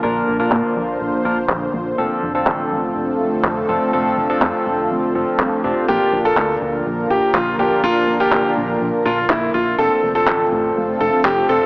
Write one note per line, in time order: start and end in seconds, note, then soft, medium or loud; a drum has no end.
0.00 0.23 A#1 loud
0.00 0.37 A#2 medium
0.00 5.84 D3 medium
0.00 1.94 F3 medium
0.00 1.94 A#3 medium
0.00 0.37 A#3 medium
0.00 0.37 D4 medium
0.00 9.75 F4 medium
0.00 0.37 F4 medium
0.00 0.37 A#4 medium
0.00 1.96 C5 medium
0.28 0.47 A#1 medium
0.40 1.22 A#2 medium
0.40 1.22 A#3 medium
0.40 1.22 D4 medium
0.40 1.22 F4 medium
0.40 1.22 A#4 medium
0.52 0.62 A#2 medium
0.52 clap loud
0.76 0.96 A#1 medium
1.01 1.11 A#1 medium
1.25 1.45 A#1 medium
1.25 1.38 A#2 medium
1.25 1.38 A#3 medium
1.25 1.38 D4 medium
1.25 1.38 F4 medium
1.25 1.38 A#4 medium
1.49 1.69 A#1 loud
1.49 clap loud
1.74 1.94 A#1 medium
1.98 2.08 F1 medium
1.98 2.32 F3 medium
1.98 5.84 A3 medium
1.98 5.84 C4 medium
1.98 2.32 C4 medium
1.98 2.32 D4 medium
1.98 2.32 F4 medium
1.98 5.84 A4 medium
1.98 2.32 A4 loud
2.23 2.42 F1 medium
2.35 3.66 F3 medium
2.35 3.66 C4 medium
2.35 3.66 D4 medium
2.35 3.66 F4 medium
2.35 3.66 A4 medium
2.47 2.67 A1 medium
2.47 clap loud
2.71 2.91 A1 medium
2.96 3.16 F1 medium
3.20 3.30 F1 medium
3.44 3.64 F1 medium
3.44 clap loud
3.69 3.79 F1 medium
3.69 3.90 F3 medium
3.69 3.90 C4 medium
3.69 3.90 D4 medium
3.69 3.90 F4 medium
3.69 3.90 A4 medium
3.93 4.13 F1 loud
3.93 4.27 F3 medium
3.93 4.27 C4 medium
3.93 4.27 D4 medium
3.93 4.27 F4 medium
3.93 4.27 A4 loud
4.18 4.38 F1 medium
4.30 5.12 F3 medium
4.30 5.12 C4 medium
4.30 5.12 D4 medium
4.30 5.12 F4 medium
4.30 5.12 A4 medium
4.42 4.52 F2 medium
4.42 clap loud
4.67 4.86 F1 medium
4.91 5.01 F1 medium
5.15 5.25 F1 medium
5.15 5.61 F3 medium
5.15 5.61 C4 medium
5.15 5.61 D4 medium
5.15 5.61 F4 medium
5.15 5.61 A4 medium
5.40 5.50 C2 medium
5.40 clap loud
5.64 5.74 F1 medium
5.64 5.85 C4 medium
5.64 5.85 D4 medium
5.64 5.85 F4 medium
5.64 5.85 G4 loud
5.88 5.98 A#1 medium
5.88 6.22 A#2 medium
5.88 11.66 D3 medium
5.88 9.75 F3 medium
5.88 6.22 A#3 medium
5.88 9.75 A#3 medium
5.88 6.22 D4 medium
5.88 6.22 F4 medium
5.88 6.17 G4 medium
5.88 6.22 A#4 loud
5.88 9.75 A#4 medium
6.13 6.33 A#1 loud
6.25 7.56 A#2 medium
6.25 7.56 A#3 medium
6.25 7.56 D4 medium
6.25 7.56 F4 medium
6.25 6.53 A4 medium
6.25 7.56 A#4 medium
6.37 6.57 D2 medium
6.37 clap loud
6.62 6.82 D2 medium
6.86 7.06 A#1 medium
7.10 7.20 A#1 medium
7.10 7.29 G4 medium
7.35 7.55 A#1 medium
7.35 7.54 F4 medium
7.35 clap loud
7.59 7.69 A#1 medium
7.59 7.81 A#2 medium
7.59 7.81 A#3 medium
7.59 7.81 D4 medium
7.59 7.81 F4 medium
7.59 7.78 G4 medium
7.59 7.81 A#4 medium
7.83 8.03 A#1 loud
7.83 8.17 A#2 medium
7.83 8.17 A#3 medium
7.83 8.17 D4 medium
7.83 8.17 F4 medium
7.83 8.12 F4 medium
7.83 8.17 A#4 medium
8.08 8.28 A#1 medium
8.20 9.02 A#2 medium
8.20 9.02 A#3 medium
8.20 9.02 D4 medium
8.20 9.02 F4 medium
8.20 8.48 G4 medium
8.20 9.03 A#4 loud
8.32 8.42 A#2 medium
8.32 clap loud
8.57 8.77 A#1 medium
8.81 8.91 A#1 medium
9.05 9.25 A#1 medium
9.05 9.18 A#2 medium
9.05 9.18 A#3 medium
9.05 9.18 D4 medium
9.05 9.18 F4 medium
9.05 9.24 F4 medium
9.05 9.18 A#4 medium
9.30 9.50 A#1 loud
9.30 9.49 E4 medium
9.30 clap loud
9.54 9.74 A#1 medium
9.54 9.73 F4 medium
9.78 9.89 F1 loud
9.78 10.12 F3 medium
9.78 11.66 A3 medium
9.78 10.12 C4 medium
9.78 11.66 C4 medium
9.78 10.12 D4 medium
9.78 10.12 F4 medium
9.78 11.66 F4 medium
9.78 10.07 A4 medium
9.78 10.12 A4 loud
9.78 11.66 A4 medium
10.03 10.23 F1 medium
10.15 11.46 F3 medium
10.15 11.46 C4 medium
10.15 11.46 D4 medium
10.15 11.46 F4 medium
10.15 10.43 A4 medium
10.15 11.46 A4 medium
10.27 10.47 A1 medium
10.27 clap loud
10.52 10.72 A1 medium
10.76 10.96 F1 medium
11.00 11.11 F1 medium
11.00 11.19 A4 medium
11.25 11.45 F1 medium
11.25 11.44 G4 medium
11.25 clap loud
11.49 11.59 F1 medium
11.49 11.66 F3 medium
11.49 11.66 C4 medium
11.49 11.66 D4 medium
11.49 11.66 F4 medium
11.49 11.66 A4 medium
11.49 11.66 A4 loud